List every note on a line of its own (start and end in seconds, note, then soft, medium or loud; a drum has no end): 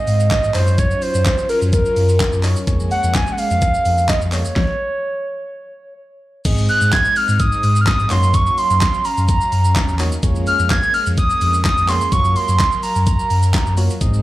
0.00 0.53 G#3 medium
0.00 0.53 C4 medium
0.00 0.53 D#4 medium
0.00 0.30 D#5 loud
0.07 0.31 G#2 loud
0.07 open hi-hat medium
0.07 shaker medium
0.20 shaker medium
0.31 0.53 D#5 loud
0.31 kick loud
0.31 snare medium
0.31 clap loud
0.31 closed hi-hat medium
0.31 shaker medium
0.43 0.51 G#2 medium
0.43 shaker medium
0.54 0.94 F#2 loud
0.54 1.30 F#3 medium
0.54 2.65 F#3 medium
0.54 4.52 C#4 medium
0.54 1.31 D#4 medium
0.54 2.65 F4 medium
0.54 0.80 C5 loud
0.54 1.31 C#5 medium
0.54 clap medium
0.54 open hi-hat medium
0.54 shaker medium
0.67 shaker medium
0.78 1.03 C#5 loud
0.78 kick loud
0.78 closed hi-hat medium
0.78 shaker medium
0.91 shaker medium
1.02 1.49 C5 loud
1.02 open hi-hat medium
1.02 shaker soft
1.14 1.30 F#2 medium
1.14 shaker medium
1.26 kick loud
1.26 snare medium
1.26 clap loud
1.26 closed hi-hat medium
1.26 shaker medium
1.38 shaker medium
1.49 1.60 A#4 medium
1.49 open hi-hat medium
1.49 shaker medium
1.62 1.84 F#2 medium
1.62 shaker medium
1.73 2.40 A#4 medium
1.73 kick loud
1.73 closed hi-hat medium
1.73 shaker medium
1.85 shaker medium
1.96 2.20 F#2 loud
1.96 open hi-hat medium
1.96 shaker medium
2.09 shaker medium
2.20 kick loud
2.20 snare medium
2.20 clap loud
2.20 closed hi-hat medium
2.20 shaker medium
2.33 2.55 F#2 medium
2.33 shaker medium
2.43 2.58 F#3 medium
2.43 2.58 D#4 medium
2.43 2.58 C#5 loud
2.43 clap medium
2.43 open hi-hat medium
2.43 shaker medium
2.56 shaker medium
2.67 2.91 F2 loud
2.67 4.54 G#3 medium
2.67 4.54 A#3 medium
2.67 3.22 A#3 medium
2.67 3.22 G#4 medium
2.67 3.22 C#5 loud
2.67 kick loud
2.67 closed hi-hat medium
2.67 shaker medium
2.80 shaker medium
2.91 3.16 F#5 loud
2.91 open hi-hat medium
2.91 shaker soft
3.04 3.19 F2 medium
3.04 shaker medium
3.15 3.33 G#5 loud
3.15 kick loud
3.15 snare loud
3.15 clap loud
3.15 closed hi-hat medium
3.15 shaker medium
3.27 shaker medium
3.32 3.40 F#5 medium
3.38 4.08 F5 loud
3.38 open hi-hat medium
3.38 shaker medium
3.51 3.73 F2 medium
3.51 shaker medium
3.62 kick loud
3.62 closed hi-hat medium
3.62 shaker medium
3.74 shaker medium
3.85 4.09 F2 loud
3.85 open hi-hat medium
3.85 shaker medium
3.98 shaker medium
4.09 4.20 D#5 loud
4.09 kick loud
4.09 snare medium
4.09 clap loud
4.09 closed hi-hat medium
4.09 shaker medium
4.21 4.44 F2 medium
4.21 shaker medium
4.32 4.47 A#3 medium
4.32 4.47 G#4 medium
4.32 5.94 C#5 loud
4.32 4.47 C#5 medium
4.32 clap medium
4.32 open hi-hat medium
4.32 shaker medium
4.45 shaker medium
4.56 kick loud
4.56 snare loud
6.45 6.69 G#2 loud
6.45 8.09 G#3 medium
6.45 8.09 C4 medium
6.45 7.00 C4 medium
6.45 8.09 D#4 medium
6.45 7.00 D#4 medium
6.45 7.00 G#4 medium
6.45 7.00 D#5 loud
6.45 kick loud
6.45 closed hi-hat medium
6.45 crash loud
6.45 shaker medium
6.58 shaker medium
6.69 6.91 F#6 loud
6.69 open hi-hat medium
6.69 shaker soft
6.81 6.97 G#2 medium
6.81 shaker medium
6.92 7.18 G#6 loud
6.92 kick loud
6.92 snare medium
6.92 clap loud
6.92 closed hi-hat medium
6.92 shaker medium
7.05 shaker medium
7.16 7.41 F6 loud
7.16 open hi-hat medium
7.16 shaker medium
7.28 7.51 G#2 medium
7.28 shaker medium
7.40 7.81 D#6 loud
7.40 kick loud
7.40 closed hi-hat medium
7.40 shaker medium
7.52 shaker medium
7.63 7.87 G#2 loud
7.63 open hi-hat medium
7.63 shaker medium
7.76 shaker medium
7.81 7.89 F6 medium
7.87 8.12 D#6 loud
7.87 kick loud
7.87 snare medium
7.87 clap loud
7.87 closed hi-hat medium
7.87 shaker medium
7.99 8.07 G#2 medium
7.99 shaker medium
8.10 8.49 F#2 loud
8.10 10.21 F#3 medium
8.10 8.86 A#3 medium
8.10 12.08 C#4 medium
8.10 8.86 D#4 medium
8.10 8.86 F#4 medium
8.10 8.87 C#5 medium
8.10 10.21 F5 medium
8.10 8.36 C6 loud
8.10 clap medium
8.10 open hi-hat medium
8.10 shaker medium
8.23 shaker medium
8.34 8.59 C#6 loud
8.34 kick loud
8.34 closed hi-hat medium
8.34 shaker medium
8.46 shaker medium
8.58 9.06 C6 loud
8.58 open hi-hat medium
8.58 shaker soft
8.70 8.86 F#2 medium
8.70 shaker medium
8.81 kick loud
8.81 snare medium
8.81 clap loud
8.81 closed hi-hat medium
8.81 shaker medium
8.94 shaker medium
9.05 9.28 A#5 medium
9.05 open hi-hat medium
9.05 shaker medium
9.17 9.40 F#2 medium
9.17 shaker medium
9.28 9.96 A#5 medium
9.28 kick loud
9.28 closed hi-hat medium
9.28 shaker medium
9.41 shaker medium
9.52 9.76 F#2 loud
9.52 open hi-hat medium
9.52 shaker medium
9.65 shaker medium
9.76 kick loud
9.76 snare medium
9.76 clap loud
9.76 closed hi-hat medium
9.76 shaker medium
9.88 10.11 E2 medium
9.88 shaker medium
9.99 10.14 A#3 medium
9.99 10.14 D#4 medium
9.99 10.14 F#4 medium
9.99 10.14 C#5 loud
9.99 clap medium
9.99 open hi-hat medium
9.99 shaker medium
10.12 shaker medium
10.23 10.47 F2 loud
10.23 12.10 G#3 medium
10.23 10.78 A#3 medium
10.23 12.10 A#3 medium
10.23 10.78 F4 medium
10.23 10.78 G#4 medium
10.23 10.78 C#5 loud
10.23 kick loud
10.23 closed hi-hat medium
10.23 shaker medium
10.36 shaker medium
10.47 10.72 F6 loud
10.47 open hi-hat medium
10.47 shaker soft
10.59 10.75 F2 medium
10.59 shaker medium
10.70 10.93 G#6 loud
10.70 kick loud
10.70 snare medium
10.70 clap loud
10.70 closed hi-hat medium
10.70 shaker medium
10.83 shaker medium
10.94 11.05 F6 loud
10.94 open hi-hat medium
10.94 shaker medium
11.06 11.29 F2 medium
11.06 shaker medium
11.18 11.62 D#6 loud
11.18 kick loud
11.18 closed hi-hat medium
11.18 shaker medium
11.30 shaker medium
11.41 11.65 F2 loud
11.41 open hi-hat medium
11.41 shaker medium
11.54 shaker medium
11.65 11.90 D#6 loud
11.65 kick loud
11.65 snare medium
11.65 clap loud
11.65 closed hi-hat medium
11.65 shaker medium
11.77 12.00 F2 medium
11.77 shaker medium
11.88 12.03 A#3 medium
11.88 12.03 F4 medium
11.88 12.03 G#4 medium
11.88 12.03 C#5 medium
11.88 12.12 C6 loud
11.88 clap medium
11.88 open hi-hat medium
11.88 shaker medium
12.01 shaker medium
12.12 12.36 F#2 loud
12.12 13.99 F#3 medium
12.12 12.67 A#3 medium
12.12 12.67 F4 medium
12.12 12.67 F#4 medium
12.12 13.99 A#4 medium
12.12 12.67 C#5 medium
12.12 13.99 F5 medium
12.12 12.37 C#6 loud
12.12 kick loud
12.12 closed hi-hat medium
12.12 shaker medium
12.25 shaker medium
12.36 12.83 C6 loud
12.36 open hi-hat medium
12.36 shaker soft
12.48 12.64 F#2 medium
12.48 shaker medium
12.59 kick loud
12.59 snare medium
12.59 clap loud
12.59 closed hi-hat medium
12.59 shaker medium
12.72 shaker medium
12.83 13.05 A#5 medium
12.83 open hi-hat medium
12.83 shaker medium
12.96 13.18 F#2 medium
12.96 shaker medium
13.07 13.74 A#5 medium
13.07 kick loud
13.07 closed hi-hat medium
13.07 shaker medium
13.19 shaker medium
13.30 13.54 F#2 loud
13.30 open hi-hat medium
13.30 shaker medium
13.43 shaker medium
13.54 kick loud
13.54 snare medium
13.54 clap loud
13.54 closed hi-hat medium
13.54 shaker medium
13.66 13.89 F#2 medium
13.66 shaker medium
13.77 13.92 A#3 medium
13.77 13.92 F4 medium
13.77 13.92 F#4 medium
13.77 13.92 C#5 medium
13.77 open hi-hat medium
13.77 shaker medium
13.90 shaker medium
14.01 14.22 G#2 loud
14.01 14.22 G#3 medium
14.01 14.22 C4 medium
14.01 14.22 D#4 medium
14.01 14.22 G#4 medium
14.01 14.22 D#5 loud
14.01 kick loud
14.01 closed hi-hat medium
14.01 shaker medium
14.14 shaker medium